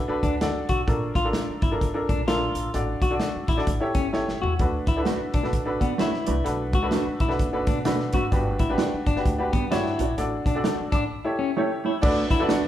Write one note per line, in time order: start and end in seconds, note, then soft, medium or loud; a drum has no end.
0.08 0.34 D4 medium
0.08 0.34 F#4 medium
0.08 0.34 A4 medium
0.08 0.35 B4 medium
0.08 muted upright bass stroke soft
0.23 0.60 D2 medium
0.23 0.35 D4 medium
0.23 kick medium
0.23 closed hi-hat medium
0.41 0.78 D4 medium
0.41 0.79 F#4 medium
0.41 0.79 A4 medium
0.41 0.79 D5 medium
0.41 snare loud
0.41 closed hi-hat medium
0.69 0.84 B1 medium
0.69 0.81 F#4 medium
0.69 kick medium
0.69 closed hi-hat medium
0.87 1.10 A#1 medium
0.87 1.18 D4 medium
0.87 1.18 F4 medium
0.87 1.18 A4 medium
0.87 1.19 A#4 medium
0.87 kick loud
0.87 closed hi-hat medium
1.15 1.30 A1 medium
1.15 1.27 F4 medium
1.15 kick medium
1.15 closed hi-hat medium
1.25 1.62 D4 medium
1.25 1.62 F4 medium
1.25 1.63 A4 medium
1.25 1.63 A#4 medium
1.33 snare loud
1.33 closed hi-hat medium
1.49 muted upright bass stroke soft
1.62 1.89 G1 medium
1.62 1.74 E4 medium
1.62 kick medium
1.62 closed hi-hat medium
1.71 1.88 D4 medium
1.71 1.88 F4 medium
1.71 1.88 A4 medium
1.71 1.88 A#4 medium
1.81 kick medium
1.81 closed hi-hat medium
1.94 2.20 D4 medium
1.94 2.20 F4 medium
1.94 2.20 A4 medium
1.94 2.21 A#4 medium
2.09 2.17 F1 medium
2.09 2.21 D4 medium
2.09 kick medium
2.09 closed hi-hat medium
2.17 2.48 A#1 medium
2.27 2.65 D4 medium
2.27 2.65 F4 medium
2.27 2.71 F4 medium
2.27 2.65 A4 medium
2.27 2.65 A#4 medium
2.27 snare loud
2.27 closed hi-hat medium
2.55 2.70 A#1 medium
2.55 closed hi-hat medium
2.74 2.97 A1 medium
2.74 3.04 D4 medium
2.74 3.05 F#4 medium
2.74 3.05 A4 medium
2.74 3.05 D5 medium
2.74 closed hi-hat medium
3.02 3.17 B1 medium
3.02 3.14 F#4 medium
3.02 kick medium
3.02 closed hi-hat medium
3.10 3.48 D4 medium
3.10 3.49 F#4 medium
3.10 3.48 A4 medium
3.10 3.49 D5 medium
3.20 snare loud
3.20 closed hi-hat medium
3.35 muted upright bass stroke soft
3.48 3.63 A1 medium
3.48 3.61 E4 medium
3.48 kick medium
3.48 closed hi-hat medium
3.57 3.67 D4 medium
3.57 3.67 F#4 medium
3.57 3.67 A4 medium
3.57 3.67 D5 medium
3.57 snare soft
3.67 3.78 A1 medium
3.67 kick medium
3.67 closed hi-hat medium
3.80 4.06 E4 medium
3.80 4.07 G4 medium
3.80 4.07 A4 medium
3.80 4.07 C#5 medium
3.80 muted upright bass stroke soft
3.95 4.32 G1 medium
3.95 4.07 C#4 medium
3.95 kick medium
3.95 closed hi-hat medium
4.13 4.51 E4 medium
4.13 4.51 G4 medium
4.13 4.51 A4 medium
4.13 4.51 C#5 medium
4.13 snare soft
4.28 snare medium
4.42 4.57 D#2 medium
4.42 4.53 F#4 medium
4.42 floor tom medium
4.59 4.82 D2 medium
4.59 4.90 D4 medium
4.59 4.90 F#4 medium
4.59 4.91 A4 medium
4.59 4.91 B4 medium
4.59 kick loud
4.59 closed hi-hat medium
4.87 5.03 C#2 medium
4.87 5.00 E4 medium
4.87 kick medium
4.87 closed hi-hat medium
4.96 5.34 D4 medium
4.96 5.02 E4 medium
4.96 5.35 A4 medium
4.96 5.35 B4 medium
5.03 5.18 A3 medium
5.03 5.18 D4 medium
5.03 5.37 F#4 medium
5.03 snare loud
5.03 closed hi-hat medium
5.07 5.18 F#4 medium
5.07 5.19 B4 medium
5.21 muted upright bass stroke soft
5.34 5.53 B1 medium
5.34 5.46 D4 medium
5.34 kick medium
5.34 closed hi-hat medium
5.43 5.60 D4 medium
5.43 5.60 F#4 medium
5.43 5.60 A4 medium
5.43 5.60 B4 medium
5.43 snare soft
5.53 5.76 A1 medium
5.53 kick medium
5.53 closed hi-hat medium
5.65 5.92 D4 medium
5.65 5.92 F#4 medium
5.65 5.92 A4 medium
5.65 5.81 B4 medium
5.80 6.18 D3 medium
5.80 5.93 B3 medium
5.80 5.98 D5 soft
5.80 5.98 F#5 medium
5.80 kick medium
5.80 closed hi-hat medium
5.98 6.10 A3 medium
5.98 6.11 D4 medium
5.98 6.44 E4 medium
5.98 6.11 F#4 medium
5.98 6.11 B4 medium
5.98 6.26 C#5 medium
5.98 6.26 E5 medium
5.98 snare loud
5.98 closed hi-hat medium
6.14 snare soft
6.26 6.43 C2 medium
6.26 6.34 A3 medium
6.26 6.34 D4 medium
6.26 6.34 F#4 medium
6.26 6.43 B4 medium
6.26 6.34 B4 medium
6.26 6.71 D5 medium
6.26 closed hi-hat medium
6.44 6.74 B1 medium
6.44 6.75 D4 medium
6.44 6.75 F#4 medium
6.44 6.76 A4 medium
6.44 6.76 B4 medium
6.44 closed hi-hat medium
6.73 6.89 C#2 medium
6.73 6.86 F#4 medium
6.73 kick medium
6.73 closed hi-hat medium
6.82 7.20 D4 medium
6.82 7.20 F#4 medium
6.82 7.20 A4 medium
6.82 7.21 B4 medium
6.91 7.04 A3 medium
6.91 7.04 D4 medium
6.91 7.05 F#4 medium
6.91 7.05 B4 medium
6.91 snare medium
6.91 closed hi-hat medium
7.07 muted upright bass stroke soft
7.20 7.35 B1 medium
7.20 7.33 E4 medium
7.20 kick medium
7.20 closed hi-hat medium
7.28 7.45 D4 medium
7.28 7.46 F#4 medium
7.28 7.46 A4 medium
7.28 7.46 B4 medium
7.28 snare soft
7.39 7.69 F#1 medium
7.39 kick medium
7.39 closed hi-hat medium
7.53 7.79 D4 medium
7.53 7.78 F#4 medium
7.53 7.79 A4 medium
7.53 7.79 B4 medium
7.67 8.04 B2 medium
7.67 7.79 D4 medium
7.67 kick medium
7.67 closed hi-hat medium
7.85 7.97 A3 medium
7.85 8.22 D4 medium
7.85 7.97 D4 medium
7.85 8.22 F#4 medium
7.85 7.97 F#4 medium
7.85 8.23 A4 medium
7.85 8.23 B4 medium
7.85 7.98 B4 medium
7.85 snare loud
7.85 closed hi-hat medium
8.00 snare soft
8.13 8.28 G#1 medium
8.13 8.20 A3 medium
8.13 8.20 D4 medium
8.13 8.26 F#4 medium
8.13 8.20 F#4 medium
8.13 8.20 B4 medium
8.13 kick medium
8.13 closed hi-hat medium
8.31 8.54 G1 medium
8.31 8.62 D4 medium
8.31 8.62 F#4 medium
8.31 8.62 G4 medium
8.31 8.62 B4 medium
8.31 kick medium
8.31 closed hi-hat medium
8.59 8.74 A1 medium
8.59 8.72 E4 medium
8.59 kick medium
8.59 closed hi-hat medium
8.69 9.06 D4 medium
8.69 9.07 F#4 medium
8.69 9.07 G4 medium
8.69 9.07 B4 medium
8.78 8.90 D4 medium
8.78 8.90 F#4 medium
8.78 8.90 B4 medium
8.78 8.90 D5 medium
8.78 snare loud
8.78 closed hi-hat medium
8.93 muted upright bass stroke soft
9.06 9.21 G1 medium
9.06 9.18 D4 medium
9.06 kick medium
9.06 closed hi-hat medium
9.16 9.32 D4 medium
9.16 9.32 F#4 medium
9.16 9.33 G4 medium
9.16 9.33 B4 medium
9.16 snare soft
9.25 9.47 D2 medium
9.25 kick medium
9.25 closed hi-hat medium
9.38 9.64 D4 medium
9.38 9.64 F#4 medium
9.38 9.64 G4 medium
9.38 9.65 B4 medium
9.53 9.90 G2 medium
9.53 9.64 B3 medium
9.53 kick medium
9.53 closed hi-hat medium
9.70 10.08 D4 medium
9.70 9.83 D4 medium
9.70 10.15 E4 medium
9.70 10.08 F#4 medium
9.70 9.83 F#4 medium
9.70 10.09 G4 medium
9.70 9.83 B4 medium
9.70 10.09 C#5 medium
9.70 9.84 D5 medium
9.70 snare loud
9.70 closed hi-hat medium
9.86 snare soft
9.99 10.14 A#1 medium
9.99 10.06 D4 medium
9.99 10.06 F#4 medium
9.99 10.06 B4 medium
9.99 10.06 D5 medium
9.99 closed hi-hat medium
10.17 10.40 A1 medium
10.17 10.48 D4 medium
10.17 10.48 F#4 medium
10.17 10.48 A4 medium
10.17 10.48 D5 medium
10.17 closed hi-hat medium
10.46 10.61 B1 medium
10.46 10.58 D4 medium
10.46 kick medium
10.46 closed hi-hat medium
10.55 10.92 D4 medium
10.55 10.92 F#4 medium
10.55 10.92 A4 medium
10.55 10.93 D5 medium
10.64 10.76 D4 medium
10.64 10.76 F#4 medium
10.64 10.76 A4 medium
10.64 10.76 D5 medium
10.64 10.91 F#5 medium
10.64 10.91 A5 medium
10.64 snare loud
10.64 closed hi-hat medium
10.80 muted upright bass stroke soft
10.92 11.07 A1 medium
10.92 11.04 D4 medium
10.92 11.37 B5 soft
10.92 11.37 D6 medium
10.92 kick medium
10.92 closed hi-hat medium
11.24 11.50 E4 medium
11.24 11.50 G4 medium
11.24 11.50 A4 medium
11.24 11.50 C#5 medium
11.39 11.50 C#4 medium
11.56 11.68 A3 medium
11.56 11.94 E4 medium
11.56 11.68 E4 medium
11.56 11.94 G4 medium
11.56 11.68 G4 medium
11.56 11.94 A4 medium
11.56 11.69 C#5 medium
11.56 11.94 C#5 medium
11.85 11.90 A3 medium
11.85 11.91 E4 medium
11.85 11.97 E4 medium
11.85 11.91 G4 medium
11.85 11.91 C#5 medium
12.01 12.25 D2 loud
12.01 12.25 A3 loud
12.01 12.24 B3 loud
12.01 12.24 D4 loud
12.01 12.33 D4 medium
12.01 12.33 F#4 medium
12.01 12.33 A4 medium
12.01 12.33 B4 medium
12.01 12.33 D5 medium
12.01 kick loud
12.01 crash medium
12.28 12.68 E2 medium
12.28 12.44 A3 medium
12.28 12.44 C#4 loud
12.28 12.44 E4 loud
12.28 12.42 E4 medium
12.28 kick medium
12.28 closed hi-hat medium
12.39 12.66 D4 medium
12.39 12.66 F#4 medium
12.39 12.66 A4 medium
12.39 12.66 B4 medium
12.39 12.67 D5 medium
12.47 12.68 B3 medium
12.47 12.68 D4 medium
12.47 12.60 D4 medium
12.47 12.68 F#4 loud
12.47 12.60 F#4 medium
12.47 12.61 B4 medium
12.47 12.61 D5 medium
12.47 snare loud
12.47 closed hi-hat medium